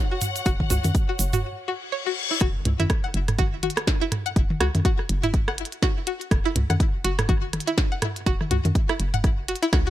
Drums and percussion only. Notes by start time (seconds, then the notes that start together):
0.21 closed hi-hat, mid tom, shaker
0.36 closed hi-hat, shaker
0.46 kick, closed hi-hat, shaker
0.60 kick, high tom
0.70 closed hi-hat, mid tom, shaker
0.84 closed hi-hat, high tom, shaker
0.95 kick, closed hi-hat, shaker
1.19 closed hi-hat, shaker
1.33 closed hi-hat, mid tom, shaker
2.41 kick, cross-stick, closed hi-hat
2.65 closed hi-hat, mid tom
2.80 closed hi-hat, high tom
2.90 kick, cross-stick, closed hi-hat
3.14 closed hi-hat
3.28 cross-stick, closed hi-hat, mid tom
3.39 kick, closed hi-hat, high tom
3.63 closed hi-hat, high tom
3.70 closed hi-hat
3.77 cross-stick, closed hi-hat
3.87 kick, snare, closed hi-hat
4.12 cross-stick, closed hi-hat, mid tom
4.26 closed hi-hat
4.36 kick, closed hi-hat
4.50 high tom
4.60 cross-stick, closed hi-hat
4.75 closed hi-hat, high tom
4.85 kick, closed hi-hat
4.99 cross-stick
5.09 closed hi-hat
5.23 closed hi-hat, mid tom
5.34 kick, closed hi-hat
5.48 cross-stick
5.58 closed hi-hat
5.65 closed hi-hat
5.72 closed hi-hat
5.82 kick, cross-stick, snare, closed hi-hat
6.07 closed hi-hat
6.21 closed hi-hat
6.31 kick, cross-stick, closed hi-hat
6.56 closed hi-hat, mid tom
6.70 cross-stick, closed hi-hat, high tom
6.80 kick, closed hi-hat
7.05 closed hi-hat
7.19 cross-stick, closed hi-hat, mid tom
7.29 kick, closed hi-hat, high tom
7.53 cross-stick, closed hi-hat, high tom
7.60 closed hi-hat
7.67 closed hi-hat
7.78 kick, snare, closed hi-hat
8.02 cross-stick, closed hi-hat, mid tom
8.16 closed hi-hat
8.26 kick, closed hi-hat
8.41 cross-stick, high tom
8.51 closed hi-hat, mid tom
8.65 closed hi-hat, high tom
8.75 kick, closed hi-hat
8.89 cross-stick
9.00 closed hi-hat
9.14 closed hi-hat, mid tom
9.24 kick, cross-stick, closed hi-hat
9.48 closed hi-hat
9.56 closed hi-hat
9.63 closed hi-hat
9.73 kick, cross-stick, snare, closed hi-hat